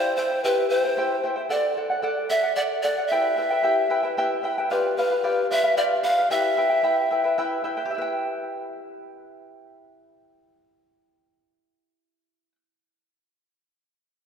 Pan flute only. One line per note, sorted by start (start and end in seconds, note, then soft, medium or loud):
0.00 0.16 C5 loud
0.17 0.42 C5 medium
0.44 0.69 B4 medium
0.70 1.26 C5 loud
1.51 1.75 D5 medium
2.30 2.55 E5 loud
2.56 2.62 D5 loud
2.83 3.07 D5 loud
3.07 4.12 E5 medium
4.71 4.95 B4 medium
4.97 5.47 B4 loud
5.51 5.76 E5 loud
5.77 5.83 D5 medium
6.04 6.32 F5 loud
6.31 7.37 E5 loud